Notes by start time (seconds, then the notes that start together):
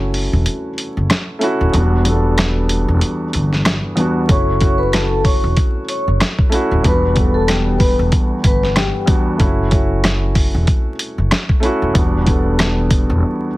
Already playing: F#1 A3 C#4 E4 F#4
0.14 open hi-hat
0.33 E1
0.46 closed hi-hat
0.78 closed hi-hat
0.97 F#1
1.10 cross-stick, snare, closed hi-hat
1.39 A3 C#4 E4, closed hi-hat
1.44 F#4
1.61 D#1
1.72 E1 E2 G3 B3 D4, closed hi-hat
1.77 F#4
2.04 E2 G3 B3 D4, closed hi-hat
2.08 A4
2.38 cross-stick, snare, closed hi-hat
2.69 closed hi-hat
2.88 E1
3.01 closed hi-hat
3.33 G1, closed hi-hat
3.53 snare
3.65 cross-stick, snare, closed hi-hat
3.96 E2 G3 B3 D4, closed hi-hat
4.00 F#4
4.27 F#1 A3 C#4 E4 C#5 C#6, kick, closed hi-hat
4.32 F#4
4.58 A3 C#4 E4, kick, closed hi-hat
4.63 F#4
4.78 B4 B5
4.92 A4 A5, cross-stick, snare, closed hi-hat
5.24 C#5 C#6, kick, open hi-hat
5.44 E1
5.57 kick, closed hi-hat
5.89 C#5 C#6, closed hi-hat
6.08 F#1
6.20 cross-stick, snare, closed hi-hat
6.39 kick
6.49 A3 C#4 E4, closed hi-hat
6.54 F#4
6.71 D#1
6.83 E1 E2 G3 B3 D4, kick, closed hi-hat
6.87 F#4 B4 B5
7.14 E2 G3 B3 D4, kick, closed hi-hat
7.19 A4
7.34 A4 A5
7.48 G4 G5, cross-stick, snare, closed hi-hat
7.79 B4 B5, kick, open hi-hat
7.99 E1
8.12 kick, closed hi-hat
8.44 G1 B4 B5, kick, closed hi-hat
8.63 snare
8.75 G4 G5, cross-stick, snare, closed hi-hat
9.06 E2 G3 B3 D4, kick, closed hi-hat
9.11 F#4
9.38 F#1 A3 C#4 E4, kick, closed hi-hat
9.43 F#4
9.69 A3 C#4 E4, kick, closed hi-hat
9.74 F#4
10.04 cross-stick, snare, closed hi-hat
10.35 kick, open hi-hat
10.54 E1
10.67 kick, closed hi-hat
10.99 closed hi-hat
11.18 F#1
11.31 cross-stick, snare, closed hi-hat
11.49 kick
11.60 A3 C#4 E4, closed hi-hat
11.65 F#4
11.82 D#1
11.94 E1 E2 G3 B3, kick, closed hi-hat
11.98 F#4
12.25 E2 G3 B3 D4, kick, closed hi-hat
12.29 A4
12.59 cross-stick, snare, closed hi-hat
12.91 kick, closed hi-hat
13.10 E1